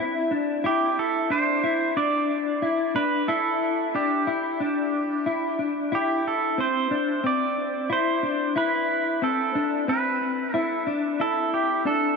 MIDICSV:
0, 0, Header, 1, 3, 480
1, 0, Start_track
1, 0, Tempo, 659341
1, 469, Time_signature, 4, 2, 24, 8
1, 8856, End_track
2, 0, Start_track
2, 0, Title_t, "Pedal steel guitar"
2, 0, Program_c, 0, 26
2, 483, Note_on_c, 0, 67, 81
2, 721, Note_on_c, 0, 69, 80
2, 723, Note_off_c, 0, 67, 0
2, 958, Note_on_c, 0, 72, 88
2, 962, Note_off_c, 0, 69, 0
2, 1431, Note_off_c, 0, 72, 0
2, 1434, Note_on_c, 0, 74, 86
2, 2150, Note_off_c, 0, 74, 0
2, 2153, Note_on_c, 0, 71, 82
2, 2389, Note_on_c, 0, 69, 84
2, 2398, Note_off_c, 0, 71, 0
2, 2879, Note_on_c, 0, 67, 67
2, 2883, Note_off_c, 0, 69, 0
2, 4045, Note_off_c, 0, 67, 0
2, 4331, Note_on_c, 0, 67, 83
2, 4567, Note_off_c, 0, 67, 0
2, 4569, Note_on_c, 0, 69, 66
2, 4806, Note_off_c, 0, 69, 0
2, 4808, Note_on_c, 0, 72, 84
2, 5286, Note_off_c, 0, 72, 0
2, 5289, Note_on_c, 0, 74, 76
2, 5767, Note_off_c, 0, 74, 0
2, 5770, Note_on_c, 0, 72, 79
2, 6239, Note_off_c, 0, 72, 0
2, 6242, Note_on_c, 0, 71, 80
2, 6723, Note_on_c, 0, 69, 71
2, 6730, Note_off_c, 0, 71, 0
2, 7200, Note_off_c, 0, 69, 0
2, 7203, Note_on_c, 0, 71, 75
2, 7683, Note_off_c, 0, 71, 0
2, 7683, Note_on_c, 0, 69, 75
2, 7887, Note_off_c, 0, 69, 0
2, 8162, Note_on_c, 0, 69, 82
2, 8400, Note_on_c, 0, 67, 74
2, 8403, Note_off_c, 0, 69, 0
2, 8638, Note_off_c, 0, 67, 0
2, 8640, Note_on_c, 0, 69, 76
2, 8856, Note_off_c, 0, 69, 0
2, 8856, End_track
3, 0, Start_track
3, 0, Title_t, "Clean electric guitar"
3, 0, Program_c, 1, 27
3, 0, Note_on_c, 1, 64, 75
3, 226, Note_on_c, 1, 62, 67
3, 229, Note_off_c, 1, 64, 0
3, 467, Note_off_c, 1, 62, 0
3, 467, Note_on_c, 1, 64, 88
3, 948, Note_off_c, 1, 64, 0
3, 948, Note_on_c, 1, 62, 70
3, 1188, Note_off_c, 1, 62, 0
3, 1191, Note_on_c, 1, 64, 67
3, 1430, Note_off_c, 1, 64, 0
3, 1431, Note_on_c, 1, 62, 74
3, 1909, Note_on_c, 1, 64, 69
3, 1910, Note_off_c, 1, 62, 0
3, 2149, Note_off_c, 1, 64, 0
3, 2151, Note_on_c, 1, 62, 65
3, 2390, Note_off_c, 1, 62, 0
3, 2390, Note_on_c, 1, 64, 78
3, 2869, Note_off_c, 1, 64, 0
3, 2872, Note_on_c, 1, 62, 66
3, 3109, Note_on_c, 1, 64, 64
3, 3111, Note_off_c, 1, 62, 0
3, 3349, Note_off_c, 1, 64, 0
3, 3351, Note_on_c, 1, 62, 73
3, 3830, Note_off_c, 1, 62, 0
3, 3831, Note_on_c, 1, 64, 72
3, 4069, Note_on_c, 1, 62, 61
3, 4070, Note_off_c, 1, 64, 0
3, 4309, Note_off_c, 1, 62, 0
3, 4310, Note_on_c, 1, 64, 81
3, 4789, Note_off_c, 1, 64, 0
3, 4789, Note_on_c, 1, 60, 68
3, 5027, Note_off_c, 1, 60, 0
3, 5030, Note_on_c, 1, 62, 64
3, 5265, Note_off_c, 1, 62, 0
3, 5268, Note_on_c, 1, 60, 67
3, 5748, Note_off_c, 1, 60, 0
3, 5749, Note_on_c, 1, 64, 78
3, 5989, Note_off_c, 1, 64, 0
3, 5991, Note_on_c, 1, 62, 66
3, 6230, Note_off_c, 1, 62, 0
3, 6230, Note_on_c, 1, 64, 75
3, 6709, Note_off_c, 1, 64, 0
3, 6712, Note_on_c, 1, 60, 68
3, 6950, Note_off_c, 1, 60, 0
3, 6954, Note_on_c, 1, 62, 67
3, 7190, Note_off_c, 1, 62, 0
3, 7193, Note_on_c, 1, 60, 79
3, 7671, Note_off_c, 1, 60, 0
3, 7672, Note_on_c, 1, 64, 80
3, 7911, Note_off_c, 1, 64, 0
3, 7911, Note_on_c, 1, 62, 71
3, 8150, Note_off_c, 1, 62, 0
3, 8151, Note_on_c, 1, 64, 77
3, 8630, Note_off_c, 1, 64, 0
3, 8631, Note_on_c, 1, 62, 72
3, 8856, Note_off_c, 1, 62, 0
3, 8856, End_track
0, 0, End_of_file